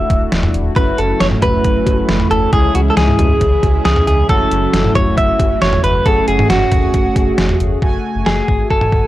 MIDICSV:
0, 0, Header, 1, 6, 480
1, 0, Start_track
1, 0, Key_signature, 3, "minor"
1, 0, Tempo, 441176
1, 830, Time_signature, 4, 2, 24, 8
1, 9870, End_track
2, 0, Start_track
2, 0, Title_t, "Clean electric guitar"
2, 0, Program_c, 0, 27
2, 0, Note_on_c, 0, 76, 101
2, 546, Note_off_c, 0, 76, 0
2, 830, Note_on_c, 0, 71, 100
2, 1071, Note_on_c, 0, 69, 90
2, 1077, Note_off_c, 0, 71, 0
2, 1310, Note_on_c, 0, 73, 101
2, 1318, Note_off_c, 0, 69, 0
2, 1375, Note_off_c, 0, 73, 0
2, 1551, Note_on_c, 0, 71, 100
2, 2467, Note_off_c, 0, 71, 0
2, 2511, Note_on_c, 0, 69, 90
2, 2734, Note_off_c, 0, 69, 0
2, 2751, Note_on_c, 0, 68, 103
2, 2974, Note_off_c, 0, 68, 0
2, 2992, Note_on_c, 0, 66, 88
2, 3046, Note_off_c, 0, 66, 0
2, 3156, Note_on_c, 0, 69, 70
2, 3227, Note_off_c, 0, 69, 0
2, 3232, Note_on_c, 0, 68, 97
2, 4178, Note_off_c, 0, 68, 0
2, 4191, Note_on_c, 0, 68, 96
2, 4419, Note_off_c, 0, 68, 0
2, 4432, Note_on_c, 0, 68, 96
2, 4668, Note_off_c, 0, 68, 0
2, 4672, Note_on_c, 0, 69, 106
2, 5386, Note_off_c, 0, 69, 0
2, 5390, Note_on_c, 0, 73, 103
2, 5627, Note_off_c, 0, 73, 0
2, 5632, Note_on_c, 0, 76, 116
2, 6077, Note_off_c, 0, 76, 0
2, 6111, Note_on_c, 0, 73, 109
2, 6347, Note_off_c, 0, 73, 0
2, 6351, Note_on_c, 0, 71, 98
2, 6592, Note_on_c, 0, 69, 106
2, 6598, Note_off_c, 0, 71, 0
2, 6814, Note_off_c, 0, 69, 0
2, 6832, Note_on_c, 0, 68, 99
2, 7054, Note_off_c, 0, 68, 0
2, 7072, Note_on_c, 0, 66, 88
2, 8228, Note_off_c, 0, 66, 0
2, 8990, Note_on_c, 0, 68, 82
2, 9466, Note_off_c, 0, 68, 0
2, 9471, Note_on_c, 0, 69, 87
2, 9870, Note_off_c, 0, 69, 0
2, 9870, End_track
3, 0, Start_track
3, 0, Title_t, "Analog polysynth"
3, 0, Program_c, 1, 90
3, 0, Note_on_c, 1, 57, 69
3, 0, Note_on_c, 1, 62, 63
3, 0, Note_on_c, 1, 64, 64
3, 0, Note_on_c, 1, 66, 76
3, 792, Note_off_c, 1, 57, 0
3, 792, Note_off_c, 1, 62, 0
3, 792, Note_off_c, 1, 64, 0
3, 792, Note_off_c, 1, 66, 0
3, 832, Note_on_c, 1, 57, 67
3, 832, Note_on_c, 1, 61, 60
3, 832, Note_on_c, 1, 64, 63
3, 832, Note_on_c, 1, 66, 74
3, 2712, Note_off_c, 1, 66, 0
3, 2713, Note_off_c, 1, 57, 0
3, 2713, Note_off_c, 1, 61, 0
3, 2713, Note_off_c, 1, 64, 0
3, 2750, Note_on_c, 1, 56, 67
3, 2750, Note_on_c, 1, 61, 65
3, 2750, Note_on_c, 1, 64, 62
3, 2751, Note_on_c, 1, 68, 77
3, 4632, Note_off_c, 1, 56, 0
3, 4632, Note_off_c, 1, 61, 0
3, 4632, Note_off_c, 1, 64, 0
3, 4632, Note_off_c, 1, 68, 0
3, 4672, Note_on_c, 1, 57, 68
3, 4672, Note_on_c, 1, 61, 63
3, 4672, Note_on_c, 1, 64, 65
3, 4672, Note_on_c, 1, 66, 76
3, 6552, Note_off_c, 1, 64, 0
3, 6553, Note_off_c, 1, 57, 0
3, 6553, Note_off_c, 1, 61, 0
3, 6553, Note_off_c, 1, 66, 0
3, 6591, Note_on_c, 1, 57, 70
3, 6591, Note_on_c, 1, 61, 65
3, 6591, Note_on_c, 1, 66, 64
3, 6592, Note_on_c, 1, 68, 76
3, 8472, Note_off_c, 1, 57, 0
3, 8472, Note_off_c, 1, 61, 0
3, 8472, Note_off_c, 1, 66, 0
3, 8473, Note_off_c, 1, 68, 0
3, 8511, Note_on_c, 1, 57, 78
3, 8511, Note_on_c, 1, 66, 73
3, 8511, Note_on_c, 1, 80, 88
3, 9870, Note_off_c, 1, 57, 0
3, 9870, Note_off_c, 1, 66, 0
3, 9870, Note_off_c, 1, 80, 0
3, 9870, End_track
4, 0, Start_track
4, 0, Title_t, "Analog synth pad"
4, 0, Program_c, 2, 89
4, 829, Note_on_c, 2, 49, 77
4, 829, Note_on_c, 2, 54, 74
4, 829, Note_on_c, 2, 57, 73
4, 829, Note_on_c, 2, 64, 84
4, 2730, Note_off_c, 2, 57, 0
4, 2731, Note_off_c, 2, 54, 0
4, 2750, Note_on_c, 2, 52, 73
4, 2750, Note_on_c, 2, 56, 72
4, 4651, Note_off_c, 2, 52, 0
4, 4651, Note_off_c, 2, 56, 0
4, 4671, Note_on_c, 2, 57, 73
4, 4672, Note_on_c, 2, 54, 72
4, 6546, Note_off_c, 2, 64, 0
4, 6572, Note_off_c, 2, 54, 0
4, 6590, Note_on_c, 2, 66, 86
4, 6590, Note_on_c, 2, 68, 72
4, 8466, Note_off_c, 2, 49, 0
4, 8472, Note_off_c, 2, 57, 0
4, 8491, Note_off_c, 2, 66, 0
4, 8491, Note_off_c, 2, 68, 0
4, 9870, End_track
5, 0, Start_track
5, 0, Title_t, "Sub bass"
5, 0, Program_c, 3, 38
5, 109, Note_on_c, 3, 26, 95
5, 278, Note_off_c, 3, 26, 0
5, 350, Note_on_c, 3, 26, 108
5, 518, Note_off_c, 3, 26, 0
5, 589, Note_on_c, 3, 26, 100
5, 757, Note_off_c, 3, 26, 0
5, 830, Note_on_c, 3, 30, 105
5, 998, Note_off_c, 3, 30, 0
5, 1070, Note_on_c, 3, 30, 109
5, 1238, Note_off_c, 3, 30, 0
5, 1310, Note_on_c, 3, 30, 112
5, 1478, Note_off_c, 3, 30, 0
5, 1550, Note_on_c, 3, 30, 101
5, 1718, Note_off_c, 3, 30, 0
5, 1791, Note_on_c, 3, 30, 106
5, 1959, Note_off_c, 3, 30, 0
5, 2030, Note_on_c, 3, 30, 100
5, 2198, Note_off_c, 3, 30, 0
5, 2270, Note_on_c, 3, 30, 101
5, 2438, Note_off_c, 3, 30, 0
5, 2509, Note_on_c, 3, 30, 100
5, 2677, Note_off_c, 3, 30, 0
5, 2750, Note_on_c, 3, 37, 104
5, 2918, Note_off_c, 3, 37, 0
5, 2990, Note_on_c, 3, 37, 99
5, 3158, Note_off_c, 3, 37, 0
5, 3230, Note_on_c, 3, 37, 109
5, 3398, Note_off_c, 3, 37, 0
5, 3470, Note_on_c, 3, 37, 104
5, 3638, Note_off_c, 3, 37, 0
5, 3712, Note_on_c, 3, 37, 113
5, 3879, Note_off_c, 3, 37, 0
5, 3950, Note_on_c, 3, 37, 104
5, 4118, Note_off_c, 3, 37, 0
5, 4190, Note_on_c, 3, 37, 110
5, 4358, Note_off_c, 3, 37, 0
5, 4430, Note_on_c, 3, 37, 94
5, 4598, Note_off_c, 3, 37, 0
5, 4671, Note_on_c, 3, 30, 110
5, 4839, Note_off_c, 3, 30, 0
5, 4910, Note_on_c, 3, 30, 109
5, 5078, Note_off_c, 3, 30, 0
5, 5150, Note_on_c, 3, 30, 108
5, 5318, Note_off_c, 3, 30, 0
5, 5391, Note_on_c, 3, 30, 102
5, 5559, Note_off_c, 3, 30, 0
5, 5632, Note_on_c, 3, 30, 102
5, 5800, Note_off_c, 3, 30, 0
5, 5870, Note_on_c, 3, 30, 101
5, 6038, Note_off_c, 3, 30, 0
5, 6111, Note_on_c, 3, 30, 101
5, 6279, Note_off_c, 3, 30, 0
5, 6350, Note_on_c, 3, 30, 100
5, 6518, Note_off_c, 3, 30, 0
5, 6590, Note_on_c, 3, 30, 113
5, 6758, Note_off_c, 3, 30, 0
5, 6831, Note_on_c, 3, 30, 100
5, 6998, Note_off_c, 3, 30, 0
5, 7070, Note_on_c, 3, 30, 104
5, 7238, Note_off_c, 3, 30, 0
5, 7310, Note_on_c, 3, 30, 105
5, 7478, Note_off_c, 3, 30, 0
5, 7551, Note_on_c, 3, 30, 111
5, 7719, Note_off_c, 3, 30, 0
5, 7789, Note_on_c, 3, 30, 99
5, 7958, Note_off_c, 3, 30, 0
5, 8029, Note_on_c, 3, 30, 104
5, 8198, Note_off_c, 3, 30, 0
5, 8270, Note_on_c, 3, 30, 101
5, 8438, Note_off_c, 3, 30, 0
5, 8510, Note_on_c, 3, 30, 109
5, 8678, Note_off_c, 3, 30, 0
5, 8870, Note_on_c, 3, 30, 95
5, 8954, Note_off_c, 3, 30, 0
5, 8990, Note_on_c, 3, 30, 103
5, 9158, Note_off_c, 3, 30, 0
5, 9230, Note_on_c, 3, 32, 99
5, 9398, Note_off_c, 3, 32, 0
5, 9471, Note_on_c, 3, 30, 94
5, 9639, Note_off_c, 3, 30, 0
5, 9709, Note_on_c, 3, 30, 100
5, 9870, Note_off_c, 3, 30, 0
5, 9870, End_track
6, 0, Start_track
6, 0, Title_t, "Drums"
6, 109, Note_on_c, 9, 36, 96
6, 110, Note_on_c, 9, 42, 85
6, 218, Note_off_c, 9, 36, 0
6, 219, Note_off_c, 9, 42, 0
6, 349, Note_on_c, 9, 38, 124
6, 349, Note_on_c, 9, 42, 61
6, 458, Note_off_c, 9, 38, 0
6, 458, Note_off_c, 9, 42, 0
6, 470, Note_on_c, 9, 45, 101
6, 579, Note_off_c, 9, 45, 0
6, 591, Note_on_c, 9, 42, 76
6, 699, Note_off_c, 9, 42, 0
6, 829, Note_on_c, 9, 42, 71
6, 830, Note_on_c, 9, 36, 124
6, 938, Note_off_c, 9, 42, 0
6, 939, Note_off_c, 9, 36, 0
6, 1070, Note_on_c, 9, 42, 85
6, 1179, Note_off_c, 9, 42, 0
6, 1310, Note_on_c, 9, 38, 127
6, 1313, Note_on_c, 9, 42, 81
6, 1419, Note_off_c, 9, 38, 0
6, 1422, Note_off_c, 9, 42, 0
6, 1429, Note_on_c, 9, 47, 69
6, 1538, Note_off_c, 9, 47, 0
6, 1546, Note_on_c, 9, 45, 96
6, 1546, Note_on_c, 9, 56, 68
6, 1548, Note_on_c, 9, 42, 89
6, 1550, Note_on_c, 9, 36, 105
6, 1655, Note_off_c, 9, 45, 0
6, 1655, Note_off_c, 9, 56, 0
6, 1657, Note_off_c, 9, 42, 0
6, 1659, Note_off_c, 9, 36, 0
6, 1788, Note_on_c, 9, 42, 73
6, 1791, Note_on_c, 9, 36, 93
6, 1897, Note_off_c, 9, 42, 0
6, 1900, Note_off_c, 9, 36, 0
6, 2028, Note_on_c, 9, 56, 77
6, 2029, Note_on_c, 9, 36, 98
6, 2030, Note_on_c, 9, 42, 90
6, 2137, Note_off_c, 9, 56, 0
6, 2138, Note_off_c, 9, 36, 0
6, 2139, Note_off_c, 9, 42, 0
6, 2270, Note_on_c, 9, 38, 121
6, 2270, Note_on_c, 9, 42, 59
6, 2379, Note_off_c, 9, 38, 0
6, 2379, Note_off_c, 9, 42, 0
6, 2390, Note_on_c, 9, 45, 98
6, 2499, Note_off_c, 9, 45, 0
6, 2512, Note_on_c, 9, 42, 77
6, 2621, Note_off_c, 9, 42, 0
6, 2750, Note_on_c, 9, 36, 126
6, 2750, Note_on_c, 9, 42, 73
6, 2859, Note_off_c, 9, 36, 0
6, 2859, Note_off_c, 9, 42, 0
6, 2990, Note_on_c, 9, 42, 87
6, 3099, Note_off_c, 9, 42, 0
6, 3231, Note_on_c, 9, 38, 127
6, 3234, Note_on_c, 9, 42, 86
6, 3340, Note_off_c, 9, 38, 0
6, 3342, Note_off_c, 9, 42, 0
6, 3350, Note_on_c, 9, 47, 73
6, 3459, Note_off_c, 9, 47, 0
6, 3469, Note_on_c, 9, 45, 98
6, 3469, Note_on_c, 9, 56, 69
6, 3470, Note_on_c, 9, 42, 87
6, 3577, Note_off_c, 9, 45, 0
6, 3577, Note_off_c, 9, 56, 0
6, 3579, Note_off_c, 9, 42, 0
6, 3710, Note_on_c, 9, 42, 76
6, 3712, Note_on_c, 9, 36, 93
6, 3819, Note_off_c, 9, 42, 0
6, 3821, Note_off_c, 9, 36, 0
6, 3949, Note_on_c, 9, 56, 79
6, 3950, Note_on_c, 9, 36, 100
6, 3952, Note_on_c, 9, 42, 86
6, 4058, Note_off_c, 9, 56, 0
6, 4059, Note_off_c, 9, 36, 0
6, 4061, Note_off_c, 9, 42, 0
6, 4191, Note_on_c, 9, 38, 122
6, 4191, Note_on_c, 9, 42, 61
6, 4300, Note_off_c, 9, 38, 0
6, 4300, Note_off_c, 9, 42, 0
6, 4311, Note_on_c, 9, 45, 98
6, 4420, Note_off_c, 9, 45, 0
6, 4433, Note_on_c, 9, 42, 78
6, 4542, Note_off_c, 9, 42, 0
6, 4671, Note_on_c, 9, 36, 127
6, 4671, Note_on_c, 9, 42, 74
6, 4779, Note_off_c, 9, 42, 0
6, 4780, Note_off_c, 9, 36, 0
6, 4912, Note_on_c, 9, 42, 85
6, 5020, Note_off_c, 9, 42, 0
6, 5152, Note_on_c, 9, 38, 124
6, 5155, Note_on_c, 9, 42, 87
6, 5260, Note_off_c, 9, 38, 0
6, 5263, Note_off_c, 9, 42, 0
6, 5271, Note_on_c, 9, 47, 71
6, 5379, Note_off_c, 9, 47, 0
6, 5388, Note_on_c, 9, 45, 95
6, 5388, Note_on_c, 9, 56, 70
6, 5390, Note_on_c, 9, 42, 87
6, 5391, Note_on_c, 9, 36, 110
6, 5497, Note_off_c, 9, 45, 0
6, 5497, Note_off_c, 9, 56, 0
6, 5499, Note_off_c, 9, 42, 0
6, 5500, Note_off_c, 9, 36, 0
6, 5631, Note_on_c, 9, 42, 73
6, 5632, Note_on_c, 9, 36, 97
6, 5740, Note_off_c, 9, 42, 0
6, 5741, Note_off_c, 9, 36, 0
6, 5869, Note_on_c, 9, 56, 78
6, 5870, Note_on_c, 9, 36, 98
6, 5872, Note_on_c, 9, 42, 89
6, 5977, Note_off_c, 9, 56, 0
6, 5979, Note_off_c, 9, 36, 0
6, 5980, Note_off_c, 9, 42, 0
6, 6110, Note_on_c, 9, 38, 118
6, 6111, Note_on_c, 9, 42, 64
6, 6219, Note_off_c, 9, 38, 0
6, 6220, Note_off_c, 9, 42, 0
6, 6231, Note_on_c, 9, 45, 101
6, 6340, Note_off_c, 9, 45, 0
6, 6352, Note_on_c, 9, 42, 77
6, 6461, Note_off_c, 9, 42, 0
6, 6589, Note_on_c, 9, 42, 71
6, 6590, Note_on_c, 9, 36, 122
6, 6698, Note_off_c, 9, 42, 0
6, 6699, Note_off_c, 9, 36, 0
6, 6830, Note_on_c, 9, 42, 90
6, 6939, Note_off_c, 9, 42, 0
6, 6952, Note_on_c, 9, 47, 101
6, 7061, Note_off_c, 9, 47, 0
6, 7070, Note_on_c, 9, 38, 126
6, 7073, Note_on_c, 9, 42, 87
6, 7179, Note_off_c, 9, 38, 0
6, 7182, Note_off_c, 9, 42, 0
6, 7306, Note_on_c, 9, 45, 96
6, 7307, Note_on_c, 9, 42, 85
6, 7310, Note_on_c, 9, 36, 107
6, 7415, Note_off_c, 9, 45, 0
6, 7416, Note_off_c, 9, 42, 0
6, 7419, Note_off_c, 9, 36, 0
6, 7549, Note_on_c, 9, 42, 74
6, 7551, Note_on_c, 9, 36, 93
6, 7658, Note_off_c, 9, 42, 0
6, 7660, Note_off_c, 9, 36, 0
6, 7789, Note_on_c, 9, 36, 100
6, 7790, Note_on_c, 9, 42, 88
6, 7898, Note_off_c, 9, 36, 0
6, 7899, Note_off_c, 9, 42, 0
6, 8029, Note_on_c, 9, 38, 125
6, 8030, Note_on_c, 9, 42, 62
6, 8138, Note_off_c, 9, 38, 0
6, 8138, Note_off_c, 9, 42, 0
6, 8150, Note_on_c, 9, 45, 101
6, 8259, Note_off_c, 9, 45, 0
6, 8272, Note_on_c, 9, 42, 73
6, 8381, Note_off_c, 9, 42, 0
6, 8510, Note_on_c, 9, 36, 119
6, 8619, Note_off_c, 9, 36, 0
6, 8990, Note_on_c, 9, 38, 114
6, 9098, Note_off_c, 9, 38, 0
6, 9230, Note_on_c, 9, 36, 103
6, 9339, Note_off_c, 9, 36, 0
6, 9471, Note_on_c, 9, 36, 87
6, 9580, Note_off_c, 9, 36, 0
6, 9588, Note_on_c, 9, 47, 90
6, 9697, Note_off_c, 9, 47, 0
6, 9709, Note_on_c, 9, 36, 92
6, 9818, Note_off_c, 9, 36, 0
6, 9870, End_track
0, 0, End_of_file